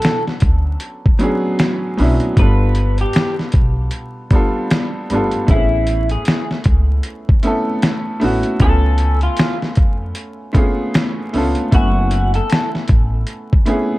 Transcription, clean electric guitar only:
0, 0, Header, 1, 2, 480
1, 0, Start_track
1, 0, Tempo, 779221
1, 1461, Time_signature, 4, 2, 24, 8
1, 8615, End_track
2, 0, Start_track
2, 0, Title_t, "Clean electric guitar"
2, 0, Program_c, 0, 27
2, 0, Note_on_c, 0, 69, 70
2, 141, Note_off_c, 0, 69, 0
2, 1472, Note_on_c, 0, 71, 102
2, 1823, Note_off_c, 0, 71, 0
2, 1854, Note_on_c, 0, 67, 76
2, 2064, Note_off_c, 0, 67, 0
2, 3393, Note_on_c, 0, 64, 105
2, 3743, Note_off_c, 0, 64, 0
2, 3766, Note_on_c, 0, 68, 70
2, 3979, Note_off_c, 0, 68, 0
2, 5308, Note_on_c, 0, 69, 112
2, 5661, Note_off_c, 0, 69, 0
2, 5687, Note_on_c, 0, 65, 77
2, 5900, Note_off_c, 0, 65, 0
2, 7235, Note_on_c, 0, 66, 95
2, 7584, Note_off_c, 0, 66, 0
2, 7610, Note_on_c, 0, 69, 81
2, 7821, Note_off_c, 0, 69, 0
2, 8615, End_track
0, 0, End_of_file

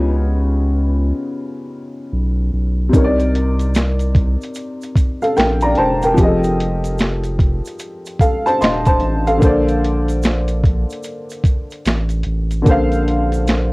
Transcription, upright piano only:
0, 0, Header, 1, 2, 480
1, 0, Start_track
1, 0, Key_signature, -2, "major"
1, 0, Tempo, 810811
1, 1738, Time_signature, 4, 2, 24, 8
1, 8128, End_track
2, 0, Start_track
2, 0, Title_t, "Upright piano"
2, 0, Program_c, 0, 0
2, 0, Control_c, 0, 64, 127
2, 0, Note_on_c, 0, 49, 72
2, 0, Note_on_c, 0, 59, 55
2, 0, Note_on_c, 0, 63, 55
2, 0, Note_on_c, 0, 65, 62
2, 0, Note_on_c, 0, 67, 59
2, 0, Note_on_c, 0, 73, 71
2, 0, Note_on_c, 0, 75, 62
2, 1700, Note_off_c, 0, 49, 0
2, 1707, Note_off_c, 0, 59, 0
2, 1712, Note_on_c, 0, 48, 73
2, 1713, Note_off_c, 0, 63, 0
2, 1725, Note_on_c, 0, 60, 58
2, 1726, Note_off_c, 0, 73, 0
2, 1738, Note_on_c, 0, 63, 54
2, 1739, Note_off_c, 0, 65, 0
2, 1745, Note_off_c, 0, 75, 0
2, 1745, Control_c, 0, 64, 0
2, 1747, Note_off_c, 0, 67, 0
2, 1751, Note_on_c, 0, 70, 61
2, 1764, Note_on_c, 0, 73, 58
2, 1799, Note_off_c, 0, 73, 0
2, 1802, Note_on_c, 0, 74, 74
2, 1857, Control_c, 0, 64, 127
2, 2921, Note_off_c, 0, 70, 0
2, 2947, Note_off_c, 0, 74, 0
2, 3090, Note_on_c, 0, 77, 56
2, 3095, Note_on_c, 0, 69, 52
2, 3174, Note_off_c, 0, 77, 0
2, 3176, Note_off_c, 0, 69, 0
2, 3176, Note_on_c, 0, 79, 68
2, 3180, Note_on_c, 0, 70, 55
2, 3321, Note_off_c, 0, 79, 0
2, 3323, Note_off_c, 0, 70, 0
2, 3329, Note_on_c, 0, 82, 72
2, 3332, Note_on_c, 0, 74, 53
2, 3413, Note_off_c, 0, 82, 0
2, 3414, Note_off_c, 0, 74, 0
2, 3418, Note_on_c, 0, 81, 70
2, 3421, Note_on_c, 0, 72, 59
2, 3562, Note_off_c, 0, 81, 0
2, 3564, Note_off_c, 0, 72, 0
2, 3573, Note_on_c, 0, 79, 61
2, 3577, Note_on_c, 0, 70, 53
2, 3621, Note_off_c, 0, 48, 0
2, 3628, Note_off_c, 0, 60, 0
2, 3634, Note_off_c, 0, 63, 0
2, 3634, Note_on_c, 0, 53, 73
2, 3645, Note_on_c, 0, 60, 60
2, 3659, Note_on_c, 0, 67, 62
2, 3666, Control_c, 0, 64, 0
2, 3674, Note_on_c, 0, 68, 48
2, 3686, Note_on_c, 0, 75, 68
2, 3712, Note_on_c, 0, 69, 62
2, 3715, Note_off_c, 0, 68, 0
2, 3755, Control_c, 0, 64, 127
2, 3800, Note_off_c, 0, 79, 0
2, 3802, Note_off_c, 0, 70, 0
2, 4848, Note_off_c, 0, 75, 0
2, 4853, Note_off_c, 0, 69, 0
2, 4859, Note_on_c, 0, 77, 61
2, 4862, Note_on_c, 0, 69, 53
2, 5003, Note_off_c, 0, 77, 0
2, 5004, Note_off_c, 0, 69, 0
2, 5010, Note_on_c, 0, 81, 75
2, 5014, Note_on_c, 0, 72, 59
2, 5093, Note_off_c, 0, 81, 0
2, 5096, Note_off_c, 0, 72, 0
2, 5098, Note_on_c, 0, 84, 67
2, 5102, Note_on_c, 0, 75, 61
2, 5242, Note_off_c, 0, 84, 0
2, 5244, Note_off_c, 0, 75, 0
2, 5251, Note_on_c, 0, 81, 70
2, 5254, Note_on_c, 0, 72, 65
2, 5478, Note_off_c, 0, 81, 0
2, 5480, Note_off_c, 0, 72, 0
2, 5489, Note_on_c, 0, 77, 69
2, 5494, Note_on_c, 0, 69, 54
2, 5542, Note_off_c, 0, 53, 0
2, 5548, Note_off_c, 0, 60, 0
2, 5551, Note_on_c, 0, 50, 68
2, 5555, Note_off_c, 0, 67, 0
2, 5564, Note_on_c, 0, 58, 65
2, 5567, Note_off_c, 0, 69, 0
2, 5576, Note_on_c, 0, 69, 66
2, 5586, Control_c, 0, 64, 0
2, 5588, Note_on_c, 0, 72, 63
2, 5603, Note_on_c, 0, 74, 74
2, 5671, Control_c, 0, 64, 127
2, 5718, Note_off_c, 0, 77, 0
2, 7461, Note_off_c, 0, 50, 0
2, 7467, Note_off_c, 0, 58, 0
2, 7472, Note_on_c, 0, 50, 69
2, 7473, Note_off_c, 0, 69, 0
2, 7479, Note_off_c, 0, 72, 0
2, 7485, Note_on_c, 0, 58, 64
2, 7487, Note_off_c, 0, 74, 0
2, 7498, Note_on_c, 0, 69, 66
2, 7512, Note_on_c, 0, 72, 70
2, 7525, Note_on_c, 0, 77, 85
2, 8128, Note_off_c, 0, 50, 0
2, 8128, Note_off_c, 0, 58, 0
2, 8128, Note_off_c, 0, 69, 0
2, 8128, Note_off_c, 0, 72, 0
2, 8128, Note_off_c, 0, 77, 0
2, 8128, End_track
0, 0, End_of_file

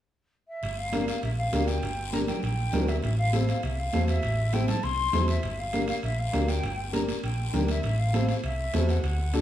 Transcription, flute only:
0, 0, Header, 1, 2, 480
1, 0, Start_track
1, 0, Tempo, 300000
1, 1011, Time_signature, 4, 2, 24, 8
1, 15059, End_track
2, 0, Start_track
2, 0, Title_t, "Flute"
2, 0, Program_c, 0, 73
2, 768, Note_on_c, 0, 76, 77
2, 1248, Note_on_c, 0, 77, 73
2, 1272, Note_off_c, 0, 76, 0
2, 1721, Note_off_c, 0, 77, 0
2, 1731, Note_on_c, 0, 77, 77
2, 1955, Note_off_c, 0, 77, 0
2, 1980, Note_on_c, 0, 76, 76
2, 2076, Note_off_c, 0, 76, 0
2, 2209, Note_on_c, 0, 77, 81
2, 2675, Note_on_c, 0, 79, 80
2, 2699, Note_off_c, 0, 77, 0
2, 3399, Note_off_c, 0, 79, 0
2, 3409, Note_on_c, 0, 82, 91
2, 3505, Note_off_c, 0, 82, 0
2, 3649, Note_on_c, 0, 79, 81
2, 3873, Note_off_c, 0, 79, 0
2, 3906, Note_on_c, 0, 79, 88
2, 4620, Note_on_c, 0, 76, 82
2, 4644, Note_off_c, 0, 79, 0
2, 5081, Note_off_c, 0, 76, 0
2, 5091, Note_on_c, 0, 77, 87
2, 5538, Note_off_c, 0, 77, 0
2, 5577, Note_on_c, 0, 77, 78
2, 5812, Note_on_c, 0, 76, 80
2, 5836, Note_off_c, 0, 77, 0
2, 6059, Note_on_c, 0, 77, 88
2, 6083, Note_off_c, 0, 76, 0
2, 6514, Note_off_c, 0, 77, 0
2, 6524, Note_on_c, 0, 76, 96
2, 7257, Note_on_c, 0, 79, 85
2, 7281, Note_off_c, 0, 76, 0
2, 7492, Note_on_c, 0, 81, 92
2, 7516, Note_off_c, 0, 79, 0
2, 7736, Note_on_c, 0, 84, 102
2, 7760, Note_off_c, 0, 81, 0
2, 8454, Note_off_c, 0, 84, 0
2, 8464, Note_on_c, 0, 76, 87
2, 8946, Note_on_c, 0, 77, 88
2, 8970, Note_off_c, 0, 76, 0
2, 9407, Note_off_c, 0, 77, 0
2, 9417, Note_on_c, 0, 77, 85
2, 9513, Note_off_c, 0, 77, 0
2, 9654, Note_on_c, 0, 76, 91
2, 9899, Note_on_c, 0, 77, 83
2, 9923, Note_off_c, 0, 76, 0
2, 10384, Note_on_c, 0, 79, 94
2, 10408, Note_off_c, 0, 77, 0
2, 11084, Note_off_c, 0, 79, 0
2, 11093, Note_on_c, 0, 82, 86
2, 11189, Note_off_c, 0, 82, 0
2, 11583, Note_on_c, 0, 79, 87
2, 12247, Note_off_c, 0, 79, 0
2, 12305, Note_on_c, 0, 76, 87
2, 12780, Note_on_c, 0, 77, 82
2, 12804, Note_off_c, 0, 76, 0
2, 13252, Note_off_c, 0, 77, 0
2, 13262, Note_on_c, 0, 77, 82
2, 13358, Note_off_c, 0, 77, 0
2, 13501, Note_on_c, 0, 76, 87
2, 14166, Note_off_c, 0, 76, 0
2, 14222, Note_on_c, 0, 78, 78
2, 15059, Note_off_c, 0, 78, 0
2, 15059, End_track
0, 0, End_of_file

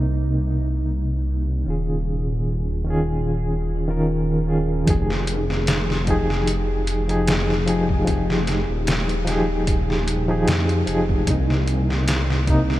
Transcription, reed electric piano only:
0, 0, Header, 1, 2, 480
1, 0, Start_track
1, 0, Key_signature, -4, "minor"
1, 0, Tempo, 800000
1, 1003, Time_signature, 4, 2, 24, 8
1, 7678, End_track
2, 0, Start_track
2, 0, Title_t, "Reed electric piano"
2, 0, Program_c, 0, 4
2, 0, Control_c, 0, 64, 127
2, 0, Note_on_c, 0, 48, 90
2, 0, Note_on_c, 0, 58, 78
2, 0, Note_on_c, 0, 63, 88
2, 970, Note_off_c, 0, 48, 0
2, 978, Note_off_c, 0, 58, 0
2, 986, Note_off_c, 0, 63, 0
2, 987, Note_on_c, 0, 51, 66
2, 998, Note_on_c, 0, 61, 61
2, 1008, Note_on_c, 0, 65, 61
2, 1010, Control_c, 0, 64, 0
2, 1021, Note_on_c, 0, 68, 69
2, 1114, Control_c, 0, 64, 127
2, 1689, Note_off_c, 0, 51, 0
2, 1694, Note_off_c, 0, 61, 0
2, 1700, Note_off_c, 0, 65, 0
2, 1706, Note_off_c, 0, 68, 0
2, 1707, Note_on_c, 0, 51, 85
2, 1720, Note_on_c, 0, 61, 81
2, 1730, Note_on_c, 0, 65, 76
2, 1742, Note_on_c, 0, 68, 94
2, 2299, Note_off_c, 0, 51, 0
2, 2306, Note_off_c, 0, 61, 0
2, 2311, Note_off_c, 0, 65, 0
2, 2317, Note_off_c, 0, 68, 0
2, 2326, Note_on_c, 0, 51, 88
2, 2332, Note_on_c, 0, 61, 76
2, 2338, Note_on_c, 0, 65, 80
2, 2344, Note_on_c, 0, 70, 94
2, 2653, Note_off_c, 0, 51, 0
2, 2656, Note_off_c, 0, 61, 0
2, 2659, Note_off_c, 0, 65, 0
2, 2662, Note_off_c, 0, 70, 0
2, 2678, Note_on_c, 0, 51, 68
2, 2682, Note_on_c, 0, 61, 64
2, 2689, Note_on_c, 0, 65, 63
2, 2694, Note_on_c, 0, 68, 77
2, 2894, Note_off_c, 0, 51, 0
2, 2896, Note_off_c, 0, 61, 0
2, 2900, Note_off_c, 0, 65, 0
2, 2902, Note_off_c, 0, 68, 0
2, 2909, Note_on_c, 0, 53, 78
2, 2920, Note_on_c, 0, 63, 72
2, 2931, Control_c, 0, 64, 0
2, 2932, Note_on_c, 0, 67, 67
2, 2943, Note_on_c, 0, 68, 85
2, 3019, Control_c, 0, 64, 127
2, 3610, Note_off_c, 0, 53, 0
2, 3615, Note_off_c, 0, 63, 0
2, 3621, Note_off_c, 0, 67, 0
2, 3627, Note_off_c, 0, 68, 0
2, 3629, Note_on_c, 0, 53, 91
2, 3641, Note_on_c, 0, 63, 88
2, 3652, Note_on_c, 0, 67, 88
2, 3663, Note_on_c, 0, 68, 107
2, 4220, Note_off_c, 0, 53, 0
2, 4226, Note_off_c, 0, 63, 0
2, 4232, Note_off_c, 0, 67, 0
2, 4237, Note_off_c, 0, 68, 0
2, 4248, Note_on_c, 0, 53, 89
2, 4254, Note_on_c, 0, 63, 87
2, 4258, Note_on_c, 0, 67, 84
2, 4265, Note_on_c, 0, 68, 100
2, 4574, Note_off_c, 0, 53, 0
2, 4577, Note_off_c, 0, 63, 0
2, 4579, Note_off_c, 0, 67, 0
2, 4582, Note_off_c, 0, 68, 0
2, 4597, Note_on_c, 0, 53, 80
2, 4603, Note_on_c, 0, 63, 69
2, 4609, Note_on_c, 0, 67, 67
2, 4614, Note_on_c, 0, 68, 84
2, 4814, Note_off_c, 0, 53, 0
2, 4817, Note_off_c, 0, 63, 0
2, 4820, Note_off_c, 0, 67, 0
2, 4822, Note_off_c, 0, 68, 0
2, 4829, Note_on_c, 0, 53, 73
2, 4839, Note_on_c, 0, 63, 69
2, 4851, Note_on_c, 0, 67, 65
2, 4863, Note_on_c, 0, 68, 84
2, 5530, Note_off_c, 0, 53, 0
2, 5535, Note_off_c, 0, 63, 0
2, 5541, Note_off_c, 0, 67, 0
2, 5547, Note_off_c, 0, 68, 0
2, 5548, Note_on_c, 0, 53, 92
2, 5559, Note_on_c, 0, 63, 86
2, 5571, Note_on_c, 0, 67, 89
2, 5582, Note_on_c, 0, 68, 102
2, 6140, Note_off_c, 0, 53, 0
2, 6146, Note_off_c, 0, 63, 0
2, 6151, Note_off_c, 0, 67, 0
2, 6157, Note_off_c, 0, 68, 0
2, 6170, Note_on_c, 0, 53, 93
2, 6174, Note_on_c, 0, 63, 87
2, 6178, Note_on_c, 0, 67, 85
2, 6185, Note_on_c, 0, 68, 104
2, 6495, Note_off_c, 0, 53, 0
2, 6497, Note_off_c, 0, 63, 0
2, 6499, Note_off_c, 0, 67, 0
2, 6502, Note_off_c, 0, 68, 0
2, 6515, Note_on_c, 0, 53, 77
2, 6521, Note_on_c, 0, 63, 65
2, 6526, Note_on_c, 0, 67, 69
2, 6532, Note_on_c, 0, 68, 81
2, 6733, Note_off_c, 0, 53, 0
2, 6736, Note_off_c, 0, 63, 0
2, 6738, Note_off_c, 0, 67, 0
2, 6742, Note_off_c, 0, 68, 0
2, 6751, Note_on_c, 0, 48, 76
2, 6766, Note_on_c, 0, 58, 68
2, 6772, Control_c, 0, 64, 0
2, 6784, Note_on_c, 0, 63, 83
2, 6891, Control_c, 0, 64, 127
2, 7451, Note_off_c, 0, 48, 0
2, 7458, Note_off_c, 0, 58, 0
2, 7467, Note_off_c, 0, 63, 0
2, 7469, Note_on_c, 0, 48, 95
2, 7484, Note_on_c, 0, 58, 85
2, 7500, Note_on_c, 0, 63, 112
2, 7678, Note_off_c, 0, 48, 0
2, 7678, Note_off_c, 0, 58, 0
2, 7678, Note_off_c, 0, 63, 0
2, 7678, End_track
0, 0, End_of_file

